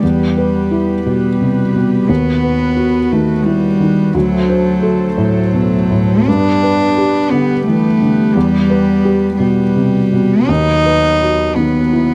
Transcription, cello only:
0, 0, Header, 1, 2, 480
1, 0, Start_track
1, 0, Key_signature, 1, "minor"
1, 0, Tempo, 688863
1, 12, Time_signature, 6, 3, 24, 8
1, 3372, Tempo, 710900
1, 4812, Tempo, 689655
1, 6252, Tempo, 727273
1, 8299, End_track
2, 0, Start_track
2, 0, Title_t, "Cello"
2, 0, Program_c, 0, 42
2, 16, Note_on_c, 0, 55, 54
2, 741, Note_off_c, 0, 55, 0
2, 752, Note_on_c, 0, 55, 56
2, 1456, Note_on_c, 0, 59, 65
2, 1466, Note_off_c, 0, 55, 0
2, 2175, Note_on_c, 0, 57, 57
2, 2185, Note_off_c, 0, 59, 0
2, 2395, Note_on_c, 0, 55, 67
2, 2406, Note_off_c, 0, 57, 0
2, 2877, Note_on_c, 0, 54, 73
2, 2888, Note_off_c, 0, 55, 0
2, 3590, Note_off_c, 0, 54, 0
2, 3594, Note_on_c, 0, 54, 65
2, 4329, Note_on_c, 0, 62, 84
2, 4339, Note_off_c, 0, 54, 0
2, 5044, Note_on_c, 0, 59, 69
2, 5055, Note_off_c, 0, 62, 0
2, 5287, Note_off_c, 0, 59, 0
2, 5296, Note_on_c, 0, 57, 70
2, 5769, Note_on_c, 0, 55, 80
2, 5780, Note_off_c, 0, 57, 0
2, 6465, Note_off_c, 0, 55, 0
2, 6469, Note_on_c, 0, 55, 67
2, 7197, Note_on_c, 0, 63, 85
2, 7207, Note_off_c, 0, 55, 0
2, 7909, Note_on_c, 0, 59, 60
2, 7919, Note_off_c, 0, 63, 0
2, 8299, Note_off_c, 0, 59, 0
2, 8299, End_track
0, 0, End_of_file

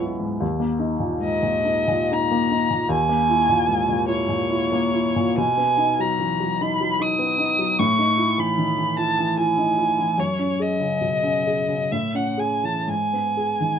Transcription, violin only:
0, 0, Header, 1, 2, 480
1, 0, Start_track
1, 0, Tempo, 813008
1, 244, Time_signature, 3, 2, 24, 8
1, 723, Tempo, 887574
1, 1203, Tempo, 793651
1, 2643, Tempo, 881057
1, 3123, Tempo, 821918
1, 3603, Tempo, 803213
1, 6483, Tempo, 892857
1, 6963, Tempo, 970874
1, 7893, End_track
2, 0, Start_track
2, 0, Title_t, "Violin"
2, 0, Program_c, 0, 40
2, 727, Note_on_c, 0, 75, 77
2, 1211, Note_on_c, 0, 82, 78
2, 1220, Note_off_c, 0, 75, 0
2, 1686, Note_off_c, 0, 82, 0
2, 1692, Note_on_c, 0, 80, 81
2, 2385, Note_off_c, 0, 80, 0
2, 2398, Note_on_c, 0, 73, 76
2, 3111, Note_off_c, 0, 73, 0
2, 3127, Note_on_c, 0, 80, 88
2, 3490, Note_on_c, 0, 82, 68
2, 3498, Note_off_c, 0, 80, 0
2, 3852, Note_on_c, 0, 83, 71
2, 3861, Note_off_c, 0, 82, 0
2, 4094, Note_on_c, 0, 87, 82
2, 4103, Note_off_c, 0, 83, 0
2, 4559, Note_on_c, 0, 85, 80
2, 4568, Note_off_c, 0, 87, 0
2, 4917, Note_on_c, 0, 83, 75
2, 4926, Note_off_c, 0, 85, 0
2, 5270, Note_off_c, 0, 83, 0
2, 5274, Note_on_c, 0, 81, 72
2, 5507, Note_off_c, 0, 81, 0
2, 5512, Note_on_c, 0, 80, 70
2, 5995, Note_on_c, 0, 73, 64
2, 6004, Note_off_c, 0, 80, 0
2, 6241, Note_on_c, 0, 75, 75
2, 6250, Note_off_c, 0, 73, 0
2, 6967, Note_on_c, 0, 76, 63
2, 6974, Note_off_c, 0, 75, 0
2, 7087, Note_on_c, 0, 78, 56
2, 7094, Note_off_c, 0, 76, 0
2, 7201, Note_on_c, 0, 80, 58
2, 7209, Note_off_c, 0, 78, 0
2, 7329, Note_on_c, 0, 81, 57
2, 7336, Note_off_c, 0, 80, 0
2, 7447, Note_on_c, 0, 80, 59
2, 7454, Note_off_c, 0, 81, 0
2, 7893, Note_off_c, 0, 80, 0
2, 7893, End_track
0, 0, End_of_file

